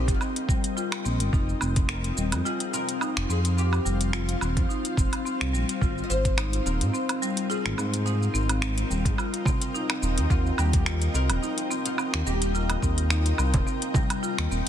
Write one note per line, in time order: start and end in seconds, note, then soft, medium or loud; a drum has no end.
0.00 14.69 C4 medium
0.00 14.69 F4 medium
0.00 0.16 G4 loud
0.00 2.88 A#4 medium
0.00 2.08 D#5 medium
0.00 2.61 G5 medium
0.08 0.17 G1 medium
0.08 kick loud
0.08 closed hi-hat medium
0.08 shaker soft
0.14 0.20 F4 medium
0.21 0.47 C4 medium
0.21 1.01 D#4 medium
0.21 low woodblock medium
0.21 shaker soft
0.36 closed hi-hat medium
0.36 shaker soft
0.49 0.63 G3 medium
0.49 kick loud
0.49 shaker medium
0.64 closed hi-hat medium
0.64 shaker soft
0.77 0.91 F4 medium
0.77 shaker soft
0.92 finger snap medium
0.92 low woodblock medium
0.92 shaker soft
1.05 1.22 A#1 medium
1.05 1.19 C4 medium
1.05 shaker medium
1.20 1.30 G1 medium
1.20 closed hi-hat medium
1.20 shaker soft
1.33 1.54 F1 loud
1.33 1.47 D#4 medium
1.33 kick loud
1.33 shaker soft
1.49 shaker soft
1.61 2.11 F1 medium
1.61 1.76 C4 medium
1.61 low woodblock medium
1.61 shaker medium
1.76 6.99 F5 medium
1.76 kick loud
1.76 closed hi-hat medium
1.76 shaker soft
1.89 2.16 C4 medium
1.89 2.46 A#4 medium
1.89 finger snap medium
1.89 shaker soft
2.04 7.62 C5 medium
2.04 closed hi-hat soft
2.04 shaker soft
2.17 2.34 D#1 medium
2.17 2.32 G3 medium
2.17 shaker medium
2.32 2.42 F2 medium
2.32 closed hi-hat medium
2.32 low woodblock medium
2.32 shaker soft
2.45 2.60 F4 medium
2.45 2.73 G#4 loud
2.45 shaker medium
2.60 closed hi-hat soft
2.60 shaker soft
2.73 2.88 C4 medium
2.73 3.30 A#4 loud
2.73 shaker medium
2.89 closed hi-hat medium
2.89 shaker soft
3.01 3.16 D#4 medium
3.01 low woodblock medium
3.01 shaker soft
3.17 3.26 F1 medium
3.17 finger snap medium
3.17 shaker soft
3.29 3.80 F2 medium
3.29 3.44 C4 medium
3.29 3.38 G#4 loud
3.29 shaker medium
3.45 closed hi-hat medium
3.45 shaker soft
3.58 3.84 C4 medium
3.58 4.15 G4 loud
3.58 shaker soft
3.73 low woodblock medium
3.73 shaker soft
3.85 4.36 F1 medium
3.85 4.00 G3 medium
3.85 shaker medium
4.01 closed hi-hat medium
4.01 shaker soft
4.13 4.28 F4 medium
4.13 5.22 F4 medium
4.13 finger snap medium
4.13 shaker soft
4.29 closed hi-hat soft
4.29 shaker soft
4.41 4.58 D#1 medium
4.41 4.56 C4 medium
4.41 low woodblock medium
4.41 shaker medium
4.57 4.66 F2 medium
4.57 kick loud
4.57 closed hi-hat soft
4.57 shaker soft
4.69 4.84 D#4 medium
4.69 shaker soft
4.85 closed hi-hat soft
4.85 shaker soft
4.97 5.08 F1 medium
4.97 5.12 C4 medium
4.97 kick loud
4.97 shaker medium
5.13 closed hi-hat medium
5.13 low woodblock medium
5.13 shaker soft
5.25 5.52 C4 medium
5.25 shaker soft
5.41 5.55 C2 medium
5.41 finger snap medium
5.41 shaker soft
5.54 5.65 A#1 medium
5.54 5.68 G3 medium
5.54 shaker medium
5.69 closed hi-hat medium
5.69 shaker soft
5.81 6.03 G#1 loud
5.81 5.96 F4 medium
5.81 kick loud
5.81 shaker soft
5.98 shaker soft
6.04 6.10 D#5 medium
6.10 6.60 G#1 medium
6.10 6.24 C4 medium
6.10 6.66 C5 loud
6.10 shaker medium
6.19 14.69 D#5 medium
6.24 14.69 A#4 medium
6.24 kick loud
6.24 closed hi-hat medium
6.24 shaker soft
6.38 6.52 D#4 medium
6.38 finger snap medium
6.38 low woodblock medium
6.38 shaker soft
6.53 closed hi-hat soft
6.53 shaker soft
6.66 6.83 D#1 loud
6.66 6.80 C4 medium
6.66 7.49 A#4 loud
6.66 shaker medium
6.81 6.90 G#2 medium
6.81 closed hi-hat medium
6.81 shaker soft
6.93 7.20 C4 medium
6.93 shaker soft
7.09 closed hi-hat soft
7.09 low woodblock medium
7.09 shaker soft
7.22 7.36 G3 medium
7.22 shaker medium
7.37 closed hi-hat medium
7.37 shaker soft
7.50 7.64 F4 medium
7.50 8.05 G#4 loud
7.50 shaker soft
7.65 7.74 G#1 medium
7.65 14.69 G5 medium
7.65 finger snap medium
7.65 shaker soft
7.78 8.28 G#2 medium
7.78 7.92 C4 medium
7.78 low woodblock medium
7.78 shaker medium
7.94 closed hi-hat medium
7.94 shaker soft
8.06 8.20 D#4 medium
8.06 9.98 G#4 loud
8.06 shaker soft
8.23 shaker soft
8.34 8.84 G#1 medium
8.34 8.48 C4 medium
8.34 shaker medium
8.49 closed hi-hat medium
8.49 low woodblock medium
8.49 shaker soft
8.62 8.89 C4 medium
8.62 finger snap medium
8.62 shaker soft
8.78 closed hi-hat soft
8.78 shaker soft
8.90 9.07 D#1 loud
8.90 9.05 G3 medium
8.90 shaker medium
9.05 9.14 G#2 medium
9.05 kick loud
9.05 closed hi-hat medium
9.05 shaker soft
9.18 9.33 F4 medium
9.18 low woodblock medium
9.18 shaker soft
9.34 closed hi-hat soft
9.34 shaker soft
9.45 9.61 C4 medium
9.45 kick loud
9.45 frame drum medium
9.45 shaker medium
9.62 closed hi-hat medium
9.62 shaker soft
9.74 9.89 D#4 medium
9.74 shaker soft
9.90 finger snap medium
9.90 low woodblock medium
9.90 shaker soft
10.02 10.19 D#1 medium
10.02 10.17 C4 medium
10.02 shaker medium
10.18 10.27 D#2 medium
10.18 closed hi-hat medium
10.18 shaker soft
10.30 10.51 D#2 loud
10.30 10.57 C4 medium
10.30 10.58 F4 loud
10.30 kick loud
10.30 shaker soft
10.47 shaker soft
10.58 11.09 D#2 medium
10.58 10.73 G3 medium
10.58 11.15 G4 loud
10.58 low woodblock medium
10.58 shaker medium
10.73 kick loud
10.73 closed hi-hat medium
10.73 shaker soft
10.86 11.01 F4 medium
10.86 finger snap medium
10.86 shaker soft
11.02 closed hi-hat soft
11.02 shaker soft
11.14 11.31 C2 medium
11.14 11.29 C4 medium
11.14 11.86 A#4 loud
11.14 shaker medium
11.30 11.39 D#1 medium
11.30 closed hi-hat medium
11.30 low woodblock medium
11.30 shaker soft
11.43 11.57 D#4 medium
11.43 shaker soft
11.58 closed hi-hat medium
11.58 shaker soft
11.71 11.85 C4 medium
11.71 shaker medium
11.86 12.26 F4 loud
11.86 closed hi-hat medium
11.86 shaker soft
11.98 12.25 C4 medium
11.98 low woodblock medium
11.98 shaker soft
12.14 12.23 D#2 medium
12.14 finger snap medium
12.27 12.77 D#1 medium
12.27 12.41 G3 medium
12.27 14.19 G4 loud
12.27 shaker medium
12.42 closed hi-hat medium
12.42 shaker soft
12.55 12.69 F4 medium
12.55 shaker soft
12.70 closed hi-hat soft
12.70 low woodblock medium
12.70 shaker soft
12.82 13.33 D#2 medium
12.82 12.97 C4 medium
12.82 kick medium
12.82 shaker medium
12.98 closed hi-hat medium
12.98 shaker soft
13.10 13.25 D#4 medium
13.10 finger snap medium
13.10 shaker soft
13.26 closed hi-hat soft
13.26 shaker soft
13.38 13.55 C2 medium
13.38 13.53 C4 medium
13.38 low woodblock medium
13.38 shaker medium
13.54 13.63 D#1 medium
13.54 kick loud
13.54 closed hi-hat medium
13.54 frame drum medium
13.54 shaker soft
13.67 13.93 C4 medium
13.67 shaker soft
13.82 closed hi-hat soft
13.82 shaker soft
13.94 14.09 G3 medium
13.94 kick loud
13.94 frame drum loud
13.94 shaker medium
14.10 closed hi-hat medium
14.10 low woodblock medium
14.10 shaker soft
14.23 14.37 F4 medium
14.23 shaker soft
14.38 14.47 D#2 medium
14.38 finger snap medium
14.38 shaker soft
14.51 14.62 D#1 medium
14.51 14.66 C4 medium
14.51 shaker medium